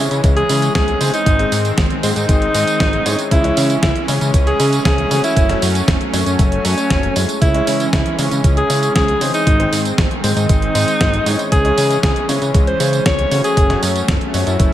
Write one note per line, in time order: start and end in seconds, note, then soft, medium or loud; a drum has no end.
0.00 1.24 E3 medium
0.00 0.46 G#3 medium
0.00 5.33 G#3 medium
0.00 0.46 C#4 medium
0.00 1.22 C#4 medium
0.00 0.46 E4 medium
0.00 0.46 C#5 loud
0.11 0.21 C#3 loud
0.11 closed hi-hat soft
0.11 tambourine soft
0.24 0.44 C#2 loud
0.24 kick loud
0.24 closed hi-hat medium
0.24 tambourine soft
0.37 0.71 G#4 loud
0.37 closed hi-hat soft
0.49 0.69 C#3 medium
0.49 0.98 G#3 medium
0.49 0.98 C#4 medium
0.49 0.98 E4 medium
0.49 0.98 C#5 loud
0.49 open hi-hat loud
0.49 tambourine medium
0.62 closed hi-hat soft
0.62 tambourine soft
0.75 0.95 C#2 medium
0.75 1.09 G#4 loud
0.75 kick loud
0.75 snare loud
0.75 closed hi-hat medium
0.75 tambourine soft
0.88 closed hi-hat soft
1.01 1.11 C#3 medium
1.01 1.36 G#3 medium
1.01 1.36 C4 medium
1.01 1.36 D#4 medium
1.01 1.36 C5 loud
1.01 open hi-hat medium
1.01 tambourine medium
1.13 1.59 D#4 loud
1.13 closed hi-hat soft
1.13 tambourine soft
1.26 1.46 G#1 loud
1.26 3.29 D#3 medium
1.26 3.29 C4 medium
1.26 kick loud
1.26 closed hi-hat medium
1.26 tambourine soft
1.39 1.50 G#3 medium
1.39 1.50 C4 medium
1.39 1.50 D#4 medium
1.39 1.50 C5 loud
1.39 closed hi-hat soft
1.52 1.72 G#2 medium
1.52 1.71 G#3 medium
1.52 1.71 C4 medium
1.52 1.71 D#4 medium
1.52 1.71 C5 medium
1.52 open hi-hat loud
1.52 tambourine medium
1.65 closed hi-hat soft
1.65 tambourine soft
1.78 1.88 G#1 medium
1.78 kick loud
1.78 snare loud
1.78 closed hi-hat medium
1.78 tambourine soft
1.90 closed hi-hat soft
2.03 2.13 G#2 medium
2.03 2.51 G#3 loud
2.03 2.51 C4 medium
2.03 2.51 D#4 medium
2.03 2.51 C5 loud
2.03 open hi-hat medium
2.03 tambourine medium
2.16 2.26 G#2 loud
2.16 3.21 D#4 loud
2.16 closed hi-hat soft
2.16 tambourine soft
2.29 2.49 G#1 loud
2.29 kick loud
2.29 closed hi-hat medium
2.29 tambourine soft
2.42 closed hi-hat soft
2.54 2.64 G#2 loud
2.54 3.03 G#3 medium
2.54 3.03 C4 medium
2.54 3.03 D#4 medium
2.54 3.03 C5 loud
2.54 open hi-hat loud
2.54 tambourine medium
2.67 closed hi-hat soft
2.67 tambourine soft
2.80 3.00 G#1 medium
2.80 kick loud
2.80 snare loud
2.80 closed hi-hat medium
2.93 closed hi-hat soft
3.06 3.16 G#2 medium
3.06 3.41 G#3 medium
3.06 3.41 C#4 medium
3.06 3.41 E4 medium
3.06 3.41 C#5 loud
3.06 open hi-hat loud
3.06 tambourine medium
3.19 closed hi-hat soft
3.19 tambourine soft
3.31 3.51 C#2 loud
3.31 5.35 E3 medium
3.31 7.38 C#4 medium
3.31 3.77 E4 loud
3.31 kick loud
3.31 closed hi-hat medium
3.31 tambourine soft
3.44 3.55 G#3 loud
3.44 3.55 C#4 medium
3.44 3.55 E4 medium
3.44 3.55 C#5 loud
3.44 closed hi-hat soft
3.57 3.77 C#3 medium
3.57 3.76 G#3 medium
3.57 3.76 C#4 medium
3.57 3.76 E4 medium
3.57 3.76 C#5 medium
3.57 open hi-hat loud
3.57 tambourine medium
3.70 closed hi-hat soft
3.70 tambourine soft
3.83 3.93 C#2 loud
3.83 4.06 E4 loud
3.83 kick loud
3.83 snare loud
3.83 closed hi-hat medium
3.83 tambourine soft
3.96 closed hi-hat soft
4.08 4.18 C#3 loud
4.08 4.56 G#3 medium
4.08 4.56 C#4 medium
4.08 4.56 E4 medium
4.08 4.56 C#5 loud
4.08 open hi-hat loud
4.08 tambourine medium
4.21 4.31 C#3 loud
4.21 closed hi-hat soft
4.21 tambourine soft
4.34 4.54 C#2 loud
4.34 kick loud
4.34 closed hi-hat medium
4.34 tambourine soft
4.47 4.81 G#4 medium
4.47 closed hi-hat soft
4.59 4.79 C#3 loud
4.59 5.08 G#3 medium
4.59 5.08 C#4 medium
4.59 5.08 E4 medium
4.59 5.08 C#5 loud
4.59 open hi-hat loud
4.59 tambourine medium
4.73 closed hi-hat soft
4.73 tambourine soft
4.85 5.05 C#2 medium
4.85 5.20 G#4 loud
4.85 kick medium
4.85 snare loud
4.85 closed hi-hat medium
4.85 tambourine soft
4.98 closed hi-hat soft
5.11 5.21 C#3 medium
5.11 5.46 A3 medium
5.11 5.46 C#4 medium
5.11 5.46 F#4 medium
5.11 5.46 C#5 loud
5.11 open hi-hat loud
5.11 tambourine medium
5.24 5.70 E4 loud
5.24 closed hi-hat soft
5.24 tambourine soft
5.37 5.56 F#1 loud
5.37 7.40 F#3 medium
5.37 7.40 A3 medium
5.37 kick loud
5.37 closed hi-hat medium
5.37 tambourine soft
5.49 5.60 A3 loud
5.49 5.60 C#4 medium
5.49 5.60 F#4 medium
5.49 5.60 C#5 loud
5.49 snare soft
5.49 closed hi-hat soft
5.62 5.82 F#2 medium
5.62 5.81 A3 medium
5.62 5.81 C#4 medium
5.62 5.81 F#4 medium
5.62 5.81 C#5 medium
5.62 open hi-hat loud
5.62 tambourine medium
5.75 closed hi-hat soft
5.75 tambourine soft
5.88 5.98 F#1 loud
5.88 kick loud
5.88 snare loud
5.88 closed hi-hat loud
6.01 closed hi-hat soft
6.13 6.23 F#2 medium
6.13 6.62 A3 loud
6.13 6.62 C#4 medium
6.13 6.62 F#4 medium
6.13 6.62 C#5 loud
6.13 open hi-hat loud
6.13 tambourine medium
6.26 6.36 F#2 loud
6.26 7.31 C#4 loud
6.26 closed hi-hat soft
6.26 tambourine soft
6.39 6.59 F#1 loud
6.39 kick loud
6.39 closed hi-hat medium
6.39 tambourine soft
6.52 closed hi-hat soft
6.65 6.75 F#2 loud
6.65 6.74 A3 medium
6.65 6.74 C#4 medium
6.65 6.74 F#4 medium
6.65 6.74 C#5 medium
6.65 open hi-hat loud
6.65 tambourine medium
6.77 7.13 A3 medium
6.77 7.13 C#4 medium
6.77 7.13 F#4 medium
6.77 7.13 C#5 medium
6.77 closed hi-hat soft
6.77 tambourine soft
6.90 7.10 F#1 medium
6.90 kick loud
6.90 snare loud
6.90 closed hi-hat medium
6.90 tambourine soft
7.03 closed hi-hat soft
7.16 7.26 F#2 medium
7.16 7.51 G#3 medium
7.16 7.51 C#4 medium
7.16 7.51 E4 medium
7.16 7.51 C#5 loud
7.16 open hi-hat loud
7.16 tambourine medium
7.29 closed hi-hat soft
7.29 tambourine soft
7.42 7.61 C#2 loud
7.42 9.45 E3 medium
7.42 9.45 G#3 medium
7.42 9.45 C#4 medium
7.42 7.88 E4 loud
7.42 kick loud
7.42 closed hi-hat loud
7.42 tambourine soft
7.54 7.65 G#3 loud
7.54 7.65 C#4 medium
7.54 7.65 E4 medium
7.54 7.65 C#5 loud
7.54 closed hi-hat soft
7.67 7.87 C#3 medium
7.67 7.86 G#3 medium
7.67 7.86 C#4 medium
7.67 7.86 E4 medium
7.67 7.86 C#5 medium
7.67 open hi-hat loud
7.67 tambourine medium
7.80 closed hi-hat soft
7.80 tambourine soft
7.93 8.03 C#2 medium
7.93 8.16 E4 medium
7.93 kick loud
7.93 snare loud
7.93 closed hi-hat medium
8.06 closed hi-hat soft
8.19 8.29 C#3 loud
8.19 8.67 G#3 medium
8.19 8.67 C#4 medium
8.19 8.67 E4 medium
8.19 8.67 C#5 loud
8.19 open hi-hat loud
8.19 tambourine medium
8.31 8.41 C#3 loud
8.31 closed hi-hat soft
8.31 tambourine soft
8.44 8.64 C#2 loud
8.44 kick loud
8.44 closed hi-hat loud
8.44 tambourine soft
8.57 8.92 G#4 loud
8.57 closed hi-hat soft
8.70 8.90 C#3 loud
8.70 9.18 G#3 medium
8.70 9.18 C#4 medium
8.70 9.18 E4 medium
8.70 9.18 C#5 loud
8.70 open hi-hat loud
8.70 tambourine medium
8.83 closed hi-hat soft
8.83 tambourine soft
8.95 9.15 C#2 medium
8.95 9.30 G#4 loud
8.95 kick loud
8.95 snare loud
8.95 closed hi-hat loud
8.95 tambourine soft
9.08 closed hi-hat soft
9.21 9.31 C#3 medium
9.21 9.57 G#3 loud
9.21 9.57 C4 medium
9.21 9.57 D#4 medium
9.21 9.57 C5 loud
9.21 open hi-hat loud
9.21 tambourine medium
9.34 9.80 D#4 loud
9.34 closed hi-hat soft
9.34 tambourine soft
9.47 9.67 G#1 loud
9.47 11.50 D#3 medium
9.47 13.53 G#3 medium
9.47 11.50 C4 medium
9.47 kick loud
9.47 closed hi-hat loud
9.47 tambourine soft
9.60 9.71 G#3 loud
9.60 9.71 C4 medium
9.60 9.71 D#4 medium
9.60 9.71 C5 loud
9.60 closed hi-hat soft
9.72 9.92 G#2 medium
9.72 9.91 G#3 medium
9.72 9.91 C4 medium
9.72 9.91 D#4 medium
9.72 9.91 C5 medium
9.72 open hi-hat loud
9.72 tambourine medium
9.85 closed hi-hat soft
9.85 tambourine soft
9.98 10.08 G#1 medium
9.98 kick loud
9.98 snare loud
9.98 closed hi-hat loud
9.98 tambourine soft
10.11 closed hi-hat soft
10.24 10.34 G#2 loud
10.24 10.72 G#3 medium
10.24 10.72 C4 medium
10.24 10.72 D#4 medium
10.24 10.72 C5 loud
10.24 open hi-hat loud
10.24 tambourine medium
10.36 10.46 G#2 loud
10.36 11.42 D#4 loud
10.36 closed hi-hat soft
10.36 tambourine soft
10.49 10.69 G#1 loud
10.49 kick loud
10.49 closed hi-hat loud
10.49 tambourine soft
10.62 closed hi-hat soft
10.75 10.85 G#2 loud
10.75 11.23 G#3 medium
10.75 11.23 C4 medium
10.75 11.23 D#4 medium
10.75 11.23 C5 loud
10.75 open hi-hat loud
10.75 tambourine medium
10.88 closed hi-hat soft
10.88 tambourine soft
11.01 11.20 G#1 medium
11.01 kick loud
11.01 snare loud
11.01 closed hi-hat loud
11.01 tambourine soft
11.14 closed hi-hat soft
11.26 11.36 G#2 medium
11.26 11.62 G#3 loud
11.26 11.62 C#4 medium
11.26 11.62 E4 medium
11.26 11.62 C#5 loud
11.26 open hi-hat loud
11.26 tambourine medium
11.39 closed hi-hat soft
11.39 tambourine soft
11.52 11.72 C#2 loud
11.52 13.55 E3 medium
11.52 14.73 C#4 medium
11.52 11.98 G#4 loud
11.52 kick loud
11.52 closed hi-hat loud
11.52 tambourine soft
11.65 11.76 G#3 medium
11.65 11.76 C#4 medium
11.65 11.76 E4 medium
11.65 11.76 C#5 loud
11.65 closed hi-hat soft
11.77 11.97 C#3 medium
11.77 11.96 G#3 medium
11.77 11.96 C#4 medium
11.77 11.96 E4 medium
11.77 11.96 C#5 medium
11.77 open hi-hat loud
11.77 tambourine medium
11.91 closed hi-hat soft
11.91 tambourine soft
12.03 12.13 C#2 medium
12.03 12.26 G#4 medium
12.03 kick loud
12.03 snare loud
12.03 closed hi-hat loud
12.16 closed hi-hat soft
12.29 12.39 C#3 medium
12.29 12.77 G#3 medium
12.29 12.77 C#4 medium
12.29 12.77 E4 medium
12.29 12.77 C#5 loud
12.29 open hi-hat medium
12.29 tambourine medium
12.42 12.52 C#3 loud
12.42 closed hi-hat soft
12.42 tambourine soft
12.54 12.74 C#2 loud
12.54 kick loud
12.54 closed hi-hat medium
12.54 tambourine soft
12.67 13.02 C5 loud
12.67 closed hi-hat soft
12.80 13.00 C#3 loud
12.80 13.28 G#3 medium
12.80 13.28 C#4 medium
12.80 13.28 E4 medium
12.80 13.28 C#5 loud
12.80 open hi-hat loud
12.80 tambourine medium
12.93 closed hi-hat soft
12.93 tambourine soft
13.06 13.26 C#2 medium
13.06 13.40 C#5 loud
13.06 kick loud
13.06 snare loud
13.06 closed hi-hat loud
13.06 tambourine soft
13.19 closed hi-hat soft
13.31 13.41 C#3 medium
13.31 13.67 A3 medium
13.31 13.67 C#4 medium
13.31 13.67 F#4 medium
13.31 13.67 C#5 loud
13.31 open hi-hat medium
13.31 tambourine medium
13.44 13.90 G#4 loud
13.44 closed hi-hat soft
13.44 tambourine soft
13.57 13.77 F#1 loud
13.57 14.73 F#3 medium
13.57 14.73 A3 medium
13.57 kick loud
13.57 closed hi-hat loud
13.57 tambourine soft
13.70 13.81 A3 medium
13.70 13.81 C#4 medium
13.70 13.81 F#4 medium
13.70 13.81 C#5 loud
13.70 snare soft
13.70 closed hi-hat soft
13.83 14.03 F#2 medium
13.83 14.01 A3 medium
13.83 14.01 C#4 medium
13.83 14.01 F#4 medium
13.83 14.01 C#5 medium
13.83 open hi-hat loud
13.83 tambourine medium
13.96 closed hi-hat soft
13.96 tambourine soft
14.08 14.18 F#1 loud
14.08 kick loud
14.08 snare loud
14.08 closed hi-hat medium
14.21 closed hi-hat soft
14.34 14.44 F#2 medium
14.34 14.73 A3 medium
14.34 14.73 C#4 medium
14.34 14.73 F#4 medium
14.34 14.73 C#5 loud
14.34 open hi-hat medium
14.34 tambourine medium
14.47 14.57 F#2 loud
14.47 14.73 E4 loud
14.47 closed hi-hat soft
14.47 tambourine soft
14.60 14.73 F#1 loud
14.60 kick loud
14.60 closed hi-hat medium
14.60 tambourine soft